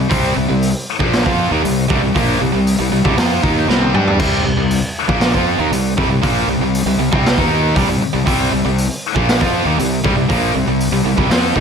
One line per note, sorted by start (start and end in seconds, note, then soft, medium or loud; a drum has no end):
0.09 0.34 C2 loud
0.09 0.34 C3 medium
0.09 0.34 G3 medium
0.09 0.35 C4 medium
0.09 kick loud
0.09 open hi-hat medium
0.35 0.48 C2 medium
0.35 0.47 C3 medium
0.35 0.48 G3 medium
0.49 0.73 C2 medium
0.49 0.69 C3 medium
0.49 0.69 G3 medium
0.62 open hi-hat medium
0.99 1.24 A#1 loud
0.99 1.24 A#2 medium
0.99 1.23 F3 loud
0.99 1.25 A#3 medium
0.99 kick loud
1.13 snare loud
1.13 open hi-hat medium
1.25 1.49 F2 medium
1.25 1.50 F3 medium
1.25 1.50 C4 medium
1.25 1.50 F4 loud
1.25 kick loud
1.51 1.63 D#2 loud
1.51 1.63 D#3 medium
1.51 1.63 A#3 loud
1.64 1.88 C2 medium
1.64 1.84 C3 medium
1.64 1.84 G3 medium
1.64 open hi-hat medium
1.90 2.02 C2 loud
1.90 2.02 C3 medium
1.90 2.02 G3 loud
1.90 kick loud
2.02 2.14 C2 medium
2.02 2.15 C3 medium
2.02 2.15 G3 medium
2.15 2.39 A#1 medium
2.15 2.40 A#2 medium
2.15 2.40 F3 medium
2.15 2.40 A#3 loud
2.15 kick loud
2.15 open hi-hat medium
2.41 2.53 C2 medium
2.41 2.53 C3 medium
2.41 2.53 G3 medium
2.54 2.78 C2 medium
2.54 2.74 C3 medium
2.54 2.74 G3 medium
2.67 open hi-hat medium
2.80 2.91 C2 medium
2.80 2.90 C3 medium
2.80 2.91 G3 medium
2.92 3.04 C2 medium
2.92 3.03 C3 medium
2.92 3.04 G3 medium
3.04 3.17 C2 medium
3.04 3.16 C3 medium
3.04 3.17 G3 loud
3.04 kick loud
3.17 3.41 F2 loud
3.17 3.42 F3 medium
3.17 3.42 C4 medium
3.17 3.42 F4 loud
3.17 snare loud
3.17 open hi-hat medium
3.43 3.67 D#2 loud
3.43 3.67 D#3 medium
3.43 3.68 A#3 medium
3.43 3.68 D#4 medium
3.43 kick loud
3.67 3.92 C2 medium
3.67 3.93 C3 medium
3.67 3.92 G3 loud
3.67 3.93 C4 medium
3.67 snare medium
3.81 high tom medium
3.93 4.17 G2 medium
3.93 4.18 G3 medium
3.93 4.18 D4 medium
3.93 4.19 G4 loud
3.93 mid tom medium
4.07 floor tom medium
4.19 4.43 C2 loud
4.19 4.43 C3 medium
4.19 4.44 G3 medium
4.19 4.44 C4 loud
4.19 kick loud
4.19 crash loud
4.44 4.56 C2 medium
4.44 4.56 C3 medium
4.44 4.56 G3 medium
4.56 4.81 C2 medium
4.56 4.78 C3 medium
4.56 4.78 G3 medium
4.71 open hi-hat medium
5.08 5.32 A#1 medium
5.08 5.33 A#2 medium
5.08 5.33 F3 loud
5.08 5.33 A#3 medium
5.08 kick loud
5.21 snare loud
5.21 open hi-hat medium
5.34 5.58 F2 medium
5.34 5.59 F3 medium
5.34 5.59 C4 medium
5.34 5.59 F4 medium
5.34 kick loud
5.59 5.70 D#2 medium
5.59 5.71 D#3 medium
5.59 5.72 A#3 medium
5.71 5.95 C2 medium
5.71 5.92 C3 medium
5.71 5.92 G3 medium
5.71 open hi-hat medium
5.97 6.07 C2 loud
5.97 6.08 C3 loud
5.97 6.08 G3 loud
5.97 kick loud
6.08 6.21 C2 medium
6.08 6.22 C3 medium
6.08 6.22 G3 medium
6.22 6.47 A#1 loud
6.22 6.47 A#2 medium
6.22 6.47 F3 loud
6.22 6.48 A#3 loud
6.22 kick loud
6.22 open hi-hat medium
6.47 6.58 C2 medium
6.47 6.60 C3 medium
6.47 6.60 G3 medium
6.59 6.84 C2 medium
6.59 6.81 C3 medium
6.59 6.82 G3 medium
6.75 open hi-hat medium
6.86 6.97 C2 medium
6.86 6.99 C3 medium
6.86 6.99 G3 medium
6.98 7.10 C2 medium
6.98 7.11 C3 medium
6.98 7.12 G3 medium
7.12 7.36 C2 medium
7.12 7.36 C3 medium
7.12 7.37 G3 medium
7.12 7.37 C4 loud
7.12 kick loud
7.26 snare loud
7.26 open hi-hat medium
7.37 7.73 D#2 medium
7.37 7.74 D#3 medium
7.37 7.75 A#3 medium
7.37 7.75 D#4 medium
7.37 kick loud
7.75 7.87 C2 medium
7.75 7.87 C3 medium
7.75 7.88 G3 loud
7.75 kick loud
7.75 open hi-hat medium
7.88 8.00 C2 medium
7.88 8.00 C3 medium
7.88 8.01 G3 medium
8.00 muted fingered electric bass stroke soft
8.00 muted distorted electric guitar stroke medium
8.14 8.25 C2 medium
8.14 8.26 C3 medium
8.14 8.26 G3 medium
8.27 8.50 C2 loud
8.27 8.51 C3 medium
8.27 8.51 G3 medium
8.27 8.51 C4 loud
8.27 kick loud
8.27 open hi-hat medium
8.53 8.64 C2 medium
8.53 8.64 C3 medium
8.53 8.65 G3 medium
8.65 8.88 C2 medium
8.65 8.85 C3 medium
8.65 8.85 G3 medium
8.78 open hi-hat medium
9.15 9.39 A#1 loud
9.15 9.40 A#2 medium
9.15 9.40 F3 medium
9.15 9.40 A#3 loud
9.15 kick loud
9.29 snare loud
9.29 open hi-hat medium
9.41 9.64 F2 medium
9.41 9.65 F3 medium
9.41 9.65 C4 medium
9.41 9.65 F4 medium
9.41 kick loud
9.41 snare soft
9.65 9.77 D#2 medium
9.65 9.77 D#3 medium
9.65 9.77 A#3 loud
9.78 10.01 C2 medium
9.78 9.98 C3 medium
9.78 9.98 G3 medium
9.78 open hi-hat medium
10.04 10.15 C2 loud
10.04 10.15 C3 medium
10.04 10.15 G3 loud
10.04 kick loud
10.16 10.28 C2 medium
10.16 10.28 C3 medium
10.16 10.29 G3 medium
10.28 10.53 A#1 medium
10.28 10.53 A#2 loud
10.28 10.53 F3 loud
10.28 10.53 A#3 loud
10.28 kick loud
10.28 open hi-hat medium
10.53 10.66 C2 medium
10.53 10.65 C3 medium
10.53 10.65 G3 medium
10.66 10.90 C2 medium
10.66 10.87 C3 medium
10.66 10.87 G3 medium
10.80 open hi-hat medium
10.91 11.04 C2 medium
10.91 11.03 C3 medium
10.91 11.04 G3 medium
11.05 11.17 C2 medium
11.05 11.16 C3 medium
11.05 11.16 G3 medium
11.17 11.29 C2 loud
11.17 11.29 C3 medium
11.17 11.29 G3 loud
11.17 kick loud
11.30 11.53 F2 loud
11.30 11.54 F3 medium
11.30 11.54 C4 medium
11.30 11.54 F4 loud
11.30 snare loud
11.30 open hi-hat medium
11.55 11.60 D#2 loud
11.55 11.60 D#3 loud
11.55 11.60 A#3 medium
11.55 11.60 D#4 medium
11.55 kick loud